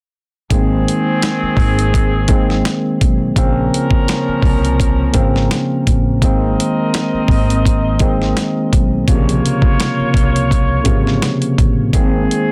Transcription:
0.50 upright bass G#1, saxophone section D#3 C4 G#4, tine electric piano D#3 G#3 A#3 C4, kick, closed hi-hat
0.88 closed hi-hat
1.22 snare, closed hi-hat
1.42 muted upright bass stroke
1.57 upright bass G#1, kick, open hi-hat
1.79 closed hi-hat
1.94 kick, closed hi-hat
2.28 tine electric piano D#3 G#3 A#3 C4, kick, closed hi-hat
2.50 snare
2.65 snare, closed hi-hat
3.01 upright bass B1, kick, closed hi-hat
3.36 upright bass A#1, tine electric piano C#3 F3 A#3 C4, saxophone section F3 C#4 A#4, kick, closed hi-hat
3.74 closed hi-hat
3.91 kick
4.08 snare, closed hi-hat
4.28 muted upright bass stroke
4.42 upright bass C2, kick, open hi-hat
4.65 closed hi-hat
4.80 kick, closed hi-hat
5.13 upright bass G#1, tine electric piano C#3 F3 A#3 C4, kick, closed hi-hat
5.36 snare
5.51 snare, closed hi-hat
5.87 upright bass A1, kick, closed hi-hat
6.22 upright bass G#1, tine electric piano D#3 G#3 A#3 C4, saxophone section C4 A#4 D#5, kick, closed hi-hat
6.60 closed hi-hat
6.94 snare, closed hi-hat
7.14 muted upright bass stroke
7.28 upright bass G#1, kick, open hi-hat
7.50 closed hi-hat
7.65 kick, closed hi-hat
7.99 tine electric piano D#3 G#3 A#3 C4, kick, closed hi-hat
8.22 snare
8.37 snare, closed hi-hat
8.73 upright bass B1, kick, closed hi-hat
9.08 upright bass A#1, tine electric piano C3 C#3 F3 A#3, saxophone section A#3 F4 C#5, kick, closed hi-hat
9.29 closed hi-hat
9.46 closed hi-hat
9.62 kick
9.80 snare, closed hi-hat
10.00 muted upright bass stroke
10.14 upright bass C2, kick, closed hi-hat
10.36 closed hi-hat
10.51 kick, closed hi-hat
10.84 upright bass G#1, tine electric piano C3 C#3 F3 A#3, kick, closed hi-hat
11.07 snare
11.22 snare, closed hi-hat
11.42 closed hi-hat
11.58 upright bass A1, kick, closed hi-hat
11.93 upright bass G#1, saxophone section D#3 C4 G#4, tine electric piano D#3 G#3 A#3 C4, kick, closed hi-hat
12.31 closed hi-hat

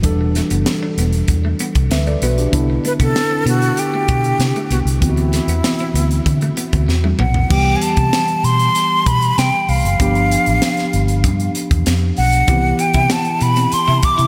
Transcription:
0.03 fingered electric bass E1, tine electric piano E3 G3 D4 A4, kick, closed hi-hat
0.21 muted clean electric guitar stroke
0.35 clean electric guitar A3, snare, closed hi-hat
0.50 fingered electric bass F#1, clean electric guitar B3, closed hi-hat
0.66 muted clean electric guitar stroke, snare, closed hi-hat
0.83 clean electric guitar D4
0.97 fingered electric bass E1, clean electric guitar B3, closed hi-hat
1.13 closed hi-hat
1.28 fingered electric bass E2, muted clean electric guitar stroke, kick, closed hi-hat
1.45 clean electric guitar A3
1.59 clean electric guitar B3, closed hi-hat
1.75 fingered electric bass C2, kick, closed hi-hat
1.91 fingered electric bass D2, tine electric piano B4 E5, muted clean electric guitar stroke, snare, closed hi-hat
2.07 clean electric guitar A3, tine electric piano A4 D5, closed hi-hat
2.22 fingered electric bass B1, clean electric guitar B3, tine electric piano F#4 B4, closed hi-hat
2.38 tine electric piano D4 G4, closed hi-hat
2.52 fingered electric bass C2, tine electric piano D3 B3 D4 E4, kick, closed hi-hat
2.70 muted clean electric guitar stroke
2.85 clean electric guitar A3, flute B4, closed hi-hat
3.00 fingered electric bass C3, clean electric guitar B3, flute A4, kick, closed hi-hat
3.16 muted clean electric guitar stroke, snare, closed hi-hat
3.31 clean electric guitar C4
3.46 fingered electric bass B2, clean electric guitar B3, flute F#4, closed hi-hat
3.62 closed hi-hat
3.77 flute G4, muted clean electric guitar stroke, closed hi-hat
3.94 clean electric guitar A3
4.08 fingered electric bass B2, clean electric guitar B3, kick, closed hi-hat
4.24 closed hi-hat
4.39 fingered electric bass C3, muted clean electric guitar stroke, snare, closed hi-hat
4.56 clean electric guitar A3, closed hi-hat
4.70 fingered electric bass C2, clean electric guitar B3, flute F#4, closed hi-hat
4.85 fingered electric bass C2, closed hi-hat
5.00 fingered electric bass D2, tine electric piano E3 B3 C4 F4, flute E4, kick, closed hi-hat
5.10 tine electric piano F#4
5.17 muted clean electric guitar stroke, closed hi-hat
5.33 clean electric guitar A3, snare, closed hi-hat
5.48 fingered electric bass E2, clean electric guitar B3, closed hi-hat
5.64 muted clean electric guitar stroke, snare, closed hi-hat
5.79 clean electric guitar C4, closed hi-hat
5.94 fingered electric bass D2, clean electric guitar B3, closed hi-hat
6.11 closed hi-hat
6.26 fingered electric bass D3, muted clean electric guitar stroke, kick, closed hi-hat
6.41 clean electric guitar A3, closed hi-hat
6.57 clean electric guitar B3, closed hi-hat
6.73 fingered electric bass D2, kick, closed hi-hat
6.88 fingered electric bass E2, muted clean electric guitar stroke, snare
7.04 clean electric guitar A3, high tom
7.19 fingered electric bass B1, clean electric guitar B3, flute F#5, mid tom
7.34 floor tom
7.49 fingered electric bass C2, tine electric piano E3 G3 B3 G4, flute G5, kick, crash
7.76 flute G#5
7.82 flute A5, closed hi-hat
7.97 fingered electric bass C3, kick, closed hi-hat
8.13 snare, closed hi-hat
8.28 closed hi-hat
8.44 fingered electric bass B2, flute C6, closed hi-hat
8.59 closed hi-hat
8.75 closed hi-hat
9.06 fingered electric bass B2, flute B5, kick, closed hi-hat
9.22 closed hi-hat
9.38 fingered electric bass C3, flute G5, snare, closed hi-hat
9.69 fingered electric bass C2, flute F5, open hi-hat
9.84 fingered electric bass F#1, closed hi-hat
9.99 fingered electric bass G1, tine electric piano F3 B3 D4 G4, kick, closed hi-hat
10.15 closed hi-hat
10.31 closed hi-hat
10.46 fingered electric bass A1, closed hi-hat
10.62 snare, closed hi-hat
10.77 snare, closed hi-hat
10.93 fingered electric bass G1, closed hi-hat
11.08 closed hi-hat
11.24 fingered electric bass G2, kick, closed hi-hat
11.40 closed hi-hat
11.55 closed hi-hat
11.71 fingered electric bass E2, kick, closed hi-hat
11.86 fingered electric bass F2, snare, closed hi-hat
12.17 fingered electric bass B1, flute F#5, open hi-hat
12.33 closed hi-hat
12.47 fingered electric bass C2, tine electric piano D#3 B3 E4 G4, clean electric guitar C4, kick, closed hi-hat
12.54 tine electric piano E3
12.79 flute G5, muted clean electric guitar stroke, closed hi-hat
12.94 fingered electric bass C3, clean electric guitar E4, kick, closed hi-hat
13.10 clean electric guitar B3, flute A5, snare, closed hi-hat
13.25 closed hi-hat
13.41 fingered electric bass B2, flute B5, muted clean electric guitar stroke, closed hi-hat
13.56 clean electric guitar C4, closed hi-hat
13.72 flute C6, muted fingered electric bass stroke, closed hi-hat
13.88 fingered electric bass C3, clean electric guitar E4
14.03 flute D6, muted clean electric guitar stroke, kick, closed hi-hat
14.18 fingered electric bass C3, clean electric guitar E4, closed hi-hat

